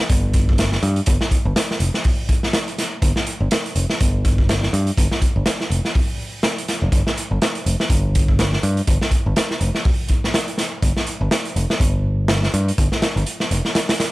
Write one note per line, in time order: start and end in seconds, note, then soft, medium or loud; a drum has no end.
0.09 0.77 G1 medium
0.09 kick loud
0.09 closed hi-hat medium
0.33 kick loud
0.33 closed hi-hat medium
0.49 kick loud
0.58 snare loud
0.58 closed hi-hat medium
0.72 snare medium
0.83 1.00 G2 medium
0.83 closed hi-hat medium
0.96 closed hi-hat soft
1.06 1.16 G1 loud
1.06 kick loud
1.06 closed hi-hat medium
1.21 snare medium
1.31 kick medium
1.31 closed hi-hat medium
1.45 1.52 G1 loud
1.56 snare loud
1.56 closed hi-hat medium
1.71 snare soft
1.80 1.89 F1 medium
1.80 closed hi-hat medium
1.94 snare soft
2.04 kick loud
2.04 open hi-hat medium
2.29 kick medium
2.29 closed hi-hat medium
2.43 snare soft
2.53 snare loud
2.53 closed hi-hat medium
2.68 closed hi-hat soft
2.78 snare soft
2.78 closed hi-hat medium
3.02 3.11 G1 loud
3.02 kick loud
3.02 closed hi-hat medium
3.16 snare medium
3.27 closed hi-hat medium
3.40 3.47 G1 loud
3.51 snare loud
3.51 closed hi-hat medium
3.66 closed hi-hat soft
3.76 3.84 F1 medium
3.76 closed hi-hat medium
3.90 snare soft
4.00 4.67 G1 medium
4.00 kick loud
4.00 closed hi-hat loud
4.25 kick medium
4.25 closed hi-hat medium
4.38 kick medium
4.49 snare loud
4.49 closed hi-hat medium
4.63 snare soft
4.73 4.90 G2 medium
4.73 closed hi-hat medium
4.87 closed hi-hat soft
4.97 5.06 G1 loud
4.97 kick loud
4.97 closed hi-hat medium
5.11 snare soft
5.22 kick medium
5.22 closed hi-hat medium
5.36 5.42 G1 medium
5.46 snare loud
5.46 closed hi-hat loud
5.61 snare soft
5.70 5.79 F1 medium
5.70 closed hi-hat medium
5.85 snare soft
5.95 kick loud
5.95 open hi-hat medium
6.43 snare loud
6.43 closed hi-hat medium
6.58 closed hi-hat soft
6.68 snare soft
6.68 closed hi-hat medium
6.82 6.89 F1 loud
6.92 7.01 G1 loud
6.92 kick loud
6.92 closed hi-hat medium
7.07 snare medium
7.17 closed hi-hat medium
7.31 7.38 G1 loud
7.42 snare loud
7.42 closed hi-hat medium
7.55 closed hi-hat soft
7.66 7.75 F1 medium
7.66 closed hi-hat medium
7.80 snare medium
7.90 8.57 G1 medium
7.90 kick loud
7.90 closed hi-hat medium
8.15 kick loud
8.15 closed hi-hat medium
8.28 kick loud
8.39 snare loud
8.39 closed hi-hat medium
8.53 snare soft
8.63 8.80 G2 medium
8.63 closed hi-hat medium
8.77 closed hi-hat soft
8.87 8.97 G1 loud
8.87 kick loud
8.87 closed hi-hat medium
9.01 snare medium
9.11 kick medium
9.11 closed hi-hat medium
9.26 9.33 G1 medium
9.36 snare loud
9.36 closed hi-hat medium
9.51 snare soft
9.61 9.70 F1 medium
9.61 closed hi-hat medium
9.75 snare soft
9.85 kick loud
9.85 open hi-hat medium
10.08 kick medium
10.08 closed hi-hat medium
10.24 snare soft
10.34 snare loud
10.34 closed hi-hat medium
10.48 closed hi-hat soft
10.58 snare soft
10.58 closed hi-hat medium
10.82 10.91 G1 loud
10.82 kick loud
10.82 closed hi-hat medium
10.97 snare medium
11.06 closed hi-hat medium
11.21 11.28 G1 loud
11.31 snare loud
11.31 closed hi-hat medium
11.45 closed hi-hat soft
11.56 11.65 F1 medium
11.56 closed hi-hat medium
11.70 snare medium
11.80 12.47 G1 medium
11.80 kick loud
11.80 closed hi-hat medium
12.28 snare loud
12.28 closed hi-hat medium
12.43 snare soft
12.54 12.70 G2 medium
12.54 closed hi-hat medium
12.68 closed hi-hat soft
12.78 12.87 G1 loud
12.78 kick loud
12.78 closed hi-hat medium
12.92 snare medium
13.02 snare loud
13.02 closed hi-hat medium
13.16 13.23 G1 medium
13.16 closed hi-hat soft
13.26 closed hi-hat medium
13.40 snare soft
13.51 13.60 F1 medium
13.51 closed hi-hat medium
13.65 snare soft
13.75 snare loud
13.75 closed hi-hat medium
13.89 snare loud
13.89 closed hi-hat medium
14.00 snare medium
14.00 closed hi-hat medium